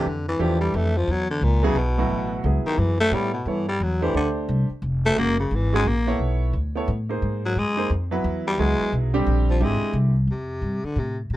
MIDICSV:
0, 0, Header, 1, 5, 480
1, 0, Start_track
1, 0, Tempo, 340909
1, 79, Time_signature, 3, 2, 24, 8
1, 16003, End_track
2, 0, Start_track
2, 0, Title_t, "Grand piano"
2, 0, Program_c, 0, 0
2, 551, Note_on_c, 0, 52, 71
2, 560, Note_on_c, 0, 57, 57
2, 564, Note_on_c, 0, 62, 66
2, 566, Note_on_c, 0, 67, 80
2, 1274, Note_off_c, 0, 52, 0
2, 1279, Note_off_c, 0, 57, 0
2, 1281, Note_off_c, 0, 62, 0
2, 1282, Note_off_c, 0, 67, 0
2, 2292, Note_on_c, 0, 54, 85
2, 2296, Note_on_c, 0, 59, 80
2, 2306, Note_on_c, 0, 64, 76
2, 2313, Note_on_c, 0, 68, 99
2, 2459, Note_off_c, 0, 54, 0
2, 2461, Note_off_c, 0, 59, 0
2, 2466, Note_off_c, 0, 64, 0
2, 2470, Note_off_c, 0, 68, 0
2, 2786, Note_on_c, 0, 45, 71
2, 2792, Note_on_c, 0, 59, 69
2, 2796, Note_on_c, 0, 54, 64
2, 2800, Note_on_c, 0, 64, 67
2, 2805, Note_on_c, 0, 66, 83
2, 3408, Note_off_c, 0, 45, 0
2, 3411, Note_off_c, 0, 59, 0
2, 3413, Note_off_c, 0, 54, 0
2, 3415, Note_off_c, 0, 64, 0
2, 3417, Note_off_c, 0, 66, 0
2, 3439, Note_on_c, 0, 54, 47
2, 3447, Note_on_c, 0, 59, 51
2, 3457, Note_on_c, 0, 64, 48
2, 3457, Note_on_c, 0, 68, 59
2, 4159, Note_off_c, 0, 54, 0
2, 4163, Note_off_c, 0, 59, 0
2, 4168, Note_off_c, 0, 64, 0
2, 4168, Note_off_c, 0, 68, 0
2, 4398, Note_on_c, 0, 59, 65
2, 4407, Note_on_c, 0, 64, 63
2, 4411, Note_on_c, 0, 69, 61
2, 4411, Note_on_c, 0, 73, 75
2, 4669, Note_off_c, 0, 59, 0
2, 4673, Note_off_c, 0, 64, 0
2, 4675, Note_off_c, 0, 69, 0
2, 4675, Note_off_c, 0, 73, 0
2, 4888, Note_on_c, 0, 59, 51
2, 4893, Note_on_c, 0, 64, 48
2, 4894, Note_on_c, 0, 69, 46
2, 4900, Note_on_c, 0, 73, 58
2, 5154, Note_off_c, 0, 59, 0
2, 5156, Note_off_c, 0, 64, 0
2, 5157, Note_off_c, 0, 69, 0
2, 5160, Note_off_c, 0, 73, 0
2, 5655, Note_on_c, 0, 57, 82
2, 5660, Note_on_c, 0, 62, 75
2, 5666, Note_on_c, 0, 72, 84
2, 5667, Note_on_c, 0, 67, 74
2, 5816, Note_off_c, 0, 62, 0
2, 5820, Note_off_c, 0, 57, 0
2, 5827, Note_off_c, 0, 67, 0
2, 5827, Note_off_c, 0, 72, 0
2, 5837, Note_on_c, 0, 62, 67
2, 5841, Note_on_c, 0, 57, 63
2, 5848, Note_on_c, 0, 67, 58
2, 5854, Note_on_c, 0, 72, 74
2, 6559, Note_off_c, 0, 62, 0
2, 6561, Note_off_c, 0, 57, 0
2, 6564, Note_off_c, 0, 67, 0
2, 6567, Note_off_c, 0, 72, 0
2, 7260, Note_on_c, 0, 56, 68
2, 7269, Note_on_c, 0, 61, 65
2, 7274, Note_on_c, 0, 66, 58
2, 7283, Note_on_c, 0, 70, 76
2, 7540, Note_off_c, 0, 56, 0
2, 7544, Note_off_c, 0, 61, 0
2, 7547, Note_off_c, 0, 66, 0
2, 7552, Note_off_c, 0, 70, 0
2, 8066, Note_on_c, 0, 56, 70
2, 8075, Note_on_c, 0, 61, 68
2, 8081, Note_on_c, 0, 66, 69
2, 8083, Note_on_c, 0, 68, 86
2, 8227, Note_off_c, 0, 56, 0
2, 8232, Note_off_c, 0, 61, 0
2, 8235, Note_off_c, 0, 66, 0
2, 8236, Note_off_c, 0, 68, 0
2, 8549, Note_on_c, 0, 59, 73
2, 8551, Note_on_c, 0, 64, 64
2, 8559, Note_on_c, 0, 69, 64
2, 8561, Note_on_c, 0, 73, 80
2, 9170, Note_off_c, 0, 59, 0
2, 9172, Note_off_c, 0, 64, 0
2, 9175, Note_off_c, 0, 69, 0
2, 9177, Note_off_c, 0, 73, 0
2, 9511, Note_on_c, 0, 59, 72
2, 9516, Note_on_c, 0, 64, 63
2, 9524, Note_on_c, 0, 69, 63
2, 9534, Note_on_c, 0, 73, 83
2, 9669, Note_off_c, 0, 59, 0
2, 9672, Note_off_c, 0, 64, 0
2, 9676, Note_off_c, 0, 69, 0
2, 9681, Note_off_c, 0, 73, 0
2, 9987, Note_on_c, 0, 58, 67
2, 9993, Note_on_c, 0, 63, 57
2, 10004, Note_on_c, 0, 72, 70
2, 10005, Note_on_c, 0, 68, 54
2, 10609, Note_off_c, 0, 58, 0
2, 10612, Note_off_c, 0, 63, 0
2, 10617, Note_off_c, 0, 72, 0
2, 10618, Note_off_c, 0, 68, 0
2, 10939, Note_on_c, 0, 63, 58
2, 10945, Note_on_c, 0, 58, 72
2, 10948, Note_on_c, 0, 68, 61
2, 10957, Note_on_c, 0, 72, 76
2, 11103, Note_off_c, 0, 63, 0
2, 11106, Note_off_c, 0, 58, 0
2, 11107, Note_off_c, 0, 68, 0
2, 11112, Note_off_c, 0, 72, 0
2, 11422, Note_on_c, 0, 54, 70
2, 11425, Note_on_c, 0, 59, 61
2, 11434, Note_on_c, 0, 64, 69
2, 11435, Note_on_c, 0, 71, 86
2, 12046, Note_off_c, 0, 54, 0
2, 12047, Note_off_c, 0, 59, 0
2, 12052, Note_off_c, 0, 64, 0
2, 12052, Note_off_c, 0, 71, 0
2, 12092, Note_on_c, 0, 54, 70
2, 12100, Note_on_c, 0, 59, 60
2, 12102, Note_on_c, 0, 64, 64
2, 12107, Note_on_c, 0, 68, 71
2, 12805, Note_off_c, 0, 54, 0
2, 12809, Note_off_c, 0, 59, 0
2, 12810, Note_off_c, 0, 64, 0
2, 12812, Note_off_c, 0, 68, 0
2, 12862, Note_on_c, 0, 50, 91
2, 12869, Note_on_c, 0, 60, 83
2, 12871, Note_on_c, 0, 55, 85
2, 12871, Note_on_c, 0, 67, 92
2, 13486, Note_off_c, 0, 50, 0
2, 13489, Note_off_c, 0, 60, 0
2, 13490, Note_off_c, 0, 55, 0
2, 13490, Note_off_c, 0, 67, 0
2, 13520, Note_on_c, 0, 50, 59
2, 13524, Note_on_c, 0, 67, 56
2, 13528, Note_on_c, 0, 60, 59
2, 13534, Note_on_c, 0, 64, 64
2, 14239, Note_off_c, 0, 50, 0
2, 14241, Note_off_c, 0, 67, 0
2, 14243, Note_off_c, 0, 60, 0
2, 14246, Note_off_c, 0, 64, 0
2, 16003, End_track
3, 0, Start_track
3, 0, Title_t, "Baritone saxophone"
3, 0, Program_c, 1, 67
3, 114, Note_on_c, 1, 50, 79
3, 388, Note_off_c, 1, 50, 0
3, 397, Note_on_c, 1, 52, 99
3, 584, Note_on_c, 1, 53, 93
3, 605, Note_off_c, 1, 52, 0
3, 847, Note_off_c, 1, 53, 0
3, 856, Note_on_c, 1, 55, 85
3, 1068, Note_on_c, 1, 57, 97
3, 1089, Note_off_c, 1, 55, 0
3, 1370, Note_on_c, 1, 53, 94
3, 1391, Note_off_c, 1, 57, 0
3, 1563, Note_on_c, 1, 54, 104
3, 1585, Note_off_c, 1, 53, 0
3, 1828, Note_off_c, 1, 54, 0
3, 1837, Note_on_c, 1, 50, 85
3, 2025, Note_on_c, 1, 46, 75
3, 2046, Note_off_c, 1, 50, 0
3, 2319, Note_on_c, 1, 49, 92
3, 2340, Note_off_c, 1, 46, 0
3, 2507, Note_on_c, 1, 47, 86
3, 2528, Note_off_c, 1, 49, 0
3, 3454, Note_off_c, 1, 47, 0
3, 3745, Note_on_c, 1, 51, 89
3, 3931, Note_on_c, 1, 52, 80
3, 3952, Note_off_c, 1, 51, 0
3, 4219, Note_off_c, 1, 52, 0
3, 4228, Note_on_c, 1, 57, 114
3, 4425, Note_on_c, 1, 55, 97
3, 4446, Note_off_c, 1, 57, 0
3, 4685, Note_off_c, 1, 55, 0
3, 4694, Note_on_c, 1, 47, 70
3, 4906, Note_on_c, 1, 52, 89
3, 4927, Note_off_c, 1, 47, 0
3, 5177, Note_off_c, 1, 52, 0
3, 5186, Note_on_c, 1, 55, 91
3, 5392, Note_on_c, 1, 54, 91
3, 5413, Note_off_c, 1, 55, 0
3, 5678, Note_on_c, 1, 52, 106
3, 5700, Note_off_c, 1, 54, 0
3, 5851, Note_off_c, 1, 52, 0
3, 5868, Note_on_c, 1, 50, 81
3, 6040, Note_off_c, 1, 50, 0
3, 7121, Note_on_c, 1, 57, 100
3, 7300, Note_on_c, 1, 58, 91
3, 7322, Note_off_c, 1, 57, 0
3, 7590, Note_off_c, 1, 58, 0
3, 7601, Note_on_c, 1, 49, 71
3, 7818, Note_on_c, 1, 52, 84
3, 7839, Note_off_c, 1, 49, 0
3, 8089, Note_off_c, 1, 52, 0
3, 8099, Note_on_c, 1, 56, 96
3, 8272, Note_on_c, 1, 58, 83
3, 8293, Note_off_c, 1, 56, 0
3, 8737, Note_off_c, 1, 58, 0
3, 10495, Note_on_c, 1, 54, 90
3, 10680, Note_on_c, 1, 56, 103
3, 10701, Note_off_c, 1, 54, 0
3, 11141, Note_off_c, 1, 56, 0
3, 11931, Note_on_c, 1, 55, 93
3, 12107, Note_on_c, 1, 56, 106
3, 12128, Note_off_c, 1, 55, 0
3, 12574, Note_off_c, 1, 56, 0
3, 13380, Note_on_c, 1, 53, 80
3, 13559, Note_on_c, 1, 56, 95
3, 13580, Note_off_c, 1, 53, 0
3, 14020, Note_off_c, 1, 56, 0
3, 14517, Note_on_c, 1, 48, 66
3, 15272, Note_on_c, 1, 50, 78
3, 15293, Note_off_c, 1, 48, 0
3, 15478, Note_on_c, 1, 48, 67
3, 15499, Note_off_c, 1, 50, 0
3, 15759, Note_off_c, 1, 48, 0
3, 15961, Note_on_c, 1, 48, 74
3, 16003, Note_off_c, 1, 48, 0
3, 16003, End_track
4, 0, Start_track
4, 0, Title_t, "Upright bass"
4, 0, Program_c, 2, 32
4, 72, Note_on_c, 2, 41, 76
4, 541, Note_off_c, 2, 41, 0
4, 557, Note_on_c, 2, 40, 84
4, 1024, Note_off_c, 2, 40, 0
4, 1039, Note_on_c, 2, 41, 94
4, 1505, Note_off_c, 2, 41, 0
4, 1514, Note_on_c, 2, 40, 85
4, 1983, Note_off_c, 2, 40, 0
4, 1990, Note_on_c, 2, 37, 94
4, 2455, Note_off_c, 2, 37, 0
4, 2464, Note_on_c, 2, 35, 91
4, 2938, Note_off_c, 2, 35, 0
4, 2949, Note_on_c, 2, 33, 85
4, 3421, Note_off_c, 2, 33, 0
4, 3433, Note_on_c, 2, 37, 87
4, 3714, Note_off_c, 2, 37, 0
4, 3907, Note_on_c, 2, 42, 88
4, 4376, Note_off_c, 2, 42, 0
4, 4384, Note_on_c, 2, 45, 79
4, 4859, Note_off_c, 2, 45, 0
4, 4864, Note_on_c, 2, 43, 78
4, 5339, Note_off_c, 2, 43, 0
4, 5351, Note_on_c, 2, 40, 85
4, 5819, Note_off_c, 2, 40, 0
4, 5827, Note_on_c, 2, 38, 78
4, 6300, Note_off_c, 2, 38, 0
4, 6317, Note_on_c, 2, 36, 89
4, 6597, Note_off_c, 2, 36, 0
4, 6786, Note_on_c, 2, 29, 85
4, 7260, Note_off_c, 2, 29, 0
4, 7275, Note_on_c, 2, 30, 83
4, 7744, Note_off_c, 2, 30, 0
4, 7758, Note_on_c, 2, 32, 87
4, 8226, Note_off_c, 2, 32, 0
4, 8238, Note_on_c, 2, 34, 85
4, 8706, Note_off_c, 2, 34, 0
4, 8719, Note_on_c, 2, 35, 73
4, 9186, Note_off_c, 2, 35, 0
4, 9198, Note_on_c, 2, 38, 85
4, 9666, Note_off_c, 2, 38, 0
4, 9683, Note_on_c, 2, 45, 88
4, 10148, Note_off_c, 2, 45, 0
4, 10167, Note_on_c, 2, 44, 83
4, 10630, Note_off_c, 2, 44, 0
4, 10638, Note_on_c, 2, 42, 82
4, 11105, Note_off_c, 2, 42, 0
4, 11123, Note_on_c, 2, 41, 89
4, 11588, Note_off_c, 2, 41, 0
4, 11604, Note_on_c, 2, 40, 91
4, 12068, Note_off_c, 2, 40, 0
4, 12087, Note_on_c, 2, 37, 80
4, 12362, Note_off_c, 2, 37, 0
4, 12568, Note_on_c, 2, 35, 91
4, 13030, Note_off_c, 2, 35, 0
4, 13045, Note_on_c, 2, 34, 96
4, 13508, Note_off_c, 2, 34, 0
4, 13522, Note_on_c, 2, 32, 94
4, 13799, Note_off_c, 2, 32, 0
4, 13985, Note_on_c, 2, 36, 97
4, 14455, Note_off_c, 2, 36, 0
4, 14464, Note_on_c, 2, 41, 68
4, 14938, Note_off_c, 2, 41, 0
4, 14947, Note_on_c, 2, 43, 75
4, 15232, Note_off_c, 2, 43, 0
4, 15429, Note_on_c, 2, 45, 84
4, 15902, Note_off_c, 2, 45, 0
4, 15908, Note_on_c, 2, 46, 72
4, 16003, Note_off_c, 2, 46, 0
4, 16003, End_track
5, 0, Start_track
5, 0, Title_t, "Muted upright bass strokes"
5, 3723, Note_on_c, 9, 29, 35
5, 3864, Note_off_c, 9, 29, 0
5, 6611, Note_on_c, 9, 29, 37
5, 6752, Note_off_c, 9, 29, 0
5, 13814, Note_on_c, 9, 29, 44
5, 13954, Note_off_c, 9, 29, 0
5, 15252, Note_on_c, 9, 29, 37
5, 15393, Note_off_c, 9, 29, 0
5, 16003, End_track
0, 0, End_of_file